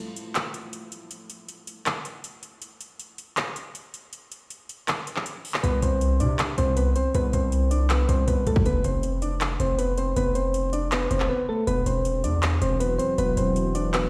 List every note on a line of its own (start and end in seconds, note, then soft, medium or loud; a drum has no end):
0.16 closed hi-hat medium
0.35 clap loud
0.35 closed hi-hat medium
0.54 closed hi-hat medium
0.73 closed hi-hat medium
0.92 closed hi-hat medium
1.11 closed hi-hat medium
1.30 closed hi-hat medium
1.48 closed hi-hat medium
1.67 closed hi-hat medium
1.86 clap loud
1.86 closed hi-hat medium
2.05 closed hi-hat medium
2.24 closed hi-hat medium
2.43 closed hi-hat medium
2.62 closed hi-hat medium
2.81 closed hi-hat medium
2.99 closed hi-hat medium
3.18 closed hi-hat medium
3.37 clap loud
3.37 closed hi-hat medium
3.56 closed hi-hat medium
3.75 closed hi-hat medium
3.94 closed hi-hat medium
4.13 closed hi-hat medium
4.32 closed hi-hat medium
4.50 closed hi-hat medium
4.69 closed hi-hat medium
4.88 clap loud
4.88 closed hi-hat medium
5.07 closed hi-hat medium
5.16 clap medium
5.26 closed hi-hat medium
5.45 open hi-hat medium
5.54 clap loud
5.63 5.82 C2 loud
5.63 5.79 B3 medium
5.63 5.78 B4 loud
5.63 closed hi-hat medium
5.82 6.22 C2 loud
5.82 6.19 C4 medium
5.82 6.18 C5 medium
5.82 closed hi-hat medium
6.01 closed hi-hat medium
6.20 6.56 C3 loud
6.20 6.35 D4 medium
6.20 6.35 D5 medium
6.20 closed hi-hat medium
6.39 clap loud
6.39 closed hi-hat medium
6.58 6.94 C2 loud
6.58 6.73 C4 medium
6.58 6.73 C5 medium
6.58 closed hi-hat medium
6.76 6.92 B3 medium
6.76 6.91 B4 medium
6.76 closed hi-hat medium
6.96 7.11 C4 medium
6.96 7.10 C5 medium
6.96 closed hi-hat medium
7.14 7.33 C2 loud
7.14 7.30 B3 medium
7.14 7.29 B4 loud
7.14 closed hi-hat medium
7.33 8.06 C2 loud
7.33 7.69 C4 medium
7.33 7.69 C5 medium
7.33 closed hi-hat medium
7.52 closed hi-hat medium
7.71 7.86 D4 medium
7.71 7.86 D5 medium
7.71 closed hi-hat medium
7.90 8.05 B3 medium
7.90 8.05 B4 medium
7.90 clap loud
7.90 closed hi-hat medium
8.09 8.27 C2 loud
8.09 8.24 C4 medium
8.09 8.23 C5 medium
8.09 closed hi-hat medium
8.27 8.46 C2 loud
8.27 8.43 B3 medium
8.27 8.42 B4 medium
8.27 closed hi-hat medium
8.47 8.65 C2 loud
8.47 8.62 A3 medium
8.47 8.61 A4 medium
8.47 closed hi-hat medium
8.56 kick loud
8.65 8.84 F1 loud
8.65 8.81 B3 medium
8.65 8.80 B4 loud
8.65 closed hi-hat medium
8.84 9.57 F1 loud
8.84 9.20 C4 medium
8.84 9.20 C5 medium
8.84 closed hi-hat medium
9.03 closed hi-hat medium
9.22 9.37 D4 medium
9.22 9.37 D5 medium
9.22 closed hi-hat medium
9.41 clap loud
9.41 closed hi-hat medium
9.60 10.14 F1 loud
9.60 9.75 C4 medium
9.60 9.75 C5 medium
9.60 closed hi-hat medium
9.78 9.94 B3 medium
9.78 9.93 B4 medium
9.78 closed hi-hat medium
9.98 10.13 C4 medium
9.98 10.12 C5 medium
9.98 closed hi-hat medium
10.16 11.07 F1 loud
10.16 10.32 B3 medium
10.16 10.31 B4 loud
10.16 closed hi-hat medium
10.35 10.71 C4 medium
10.35 10.71 C5 medium
10.35 closed hi-hat medium
10.54 closed hi-hat medium
10.73 10.88 D4 medium
10.73 10.88 D5 medium
10.73 closed hi-hat medium
10.92 11.07 B3 medium
10.92 11.07 B4 medium
10.92 clap loud
10.92 closed hi-hat medium
11.11 11.29 F1 loud
11.11 11.26 C4 medium
11.11 11.25 C5 medium
11.11 closed hi-hat medium
11.20 clap medium
11.29 11.45 B3 medium
11.29 11.44 B4 medium
11.49 11.64 A3 medium
11.49 11.63 A4 medium
11.67 11.85 E1 loud
11.67 14.10 E3 medium
11.67 14.10 F#3 medium
11.67 11.82 B3 medium
11.67 14.10 F#4 medium
11.67 11.82 B4 loud
11.67 closed hi-hat medium
11.86 12.25 E1 loud
11.86 12.22 C4 medium
11.86 12.22 C5 medium
11.86 closed hi-hat medium
12.05 closed hi-hat medium
12.24 12.60 E2 loud
12.24 12.39 D4 medium
12.24 12.39 D5 medium
12.24 closed hi-hat medium
12.43 clap loud
12.43 closed hi-hat medium
12.62 12.98 E1 loud
12.62 12.77 C4 medium
12.62 12.76 C5 medium
12.62 closed hi-hat medium
12.80 12.95 B3 medium
12.80 12.95 B4 medium
12.80 closed hi-hat medium
12.98 13.14 C4 medium
12.98 13.14 C5 medium
12.98 closed hi-hat medium
13.18 13.36 E1 loud
13.18 13.34 B3 medium
13.18 13.33 B4 loud
13.18 closed hi-hat medium
13.37 14.10 E1 loud
13.37 13.73 C4 medium
13.37 13.73 C5 medium
13.37 closed hi-hat medium
13.56 closed hi-hat medium
13.75 13.90 D4 medium
13.75 13.90 D5 medium
13.75 closed hi-hat medium
13.94 14.09 B3 medium
13.94 14.08 B4 medium
13.94 clap loud
13.94 closed hi-hat medium